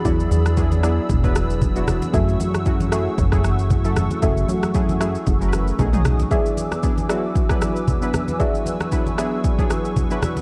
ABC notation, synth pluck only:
X:1
M:4/4
L:1/8
Q:"Swing 16ths" 1/4=115
K:Emix
V:1 name="Synth pluck"
[EGd]2 z [EGd] z4 | [FAe]2 z [FAe] z4 | [FAe]2 z [FAe] z4 | [Gde]2 z [Gde] z4 |
[Gde]2 z [Gde] z4 |]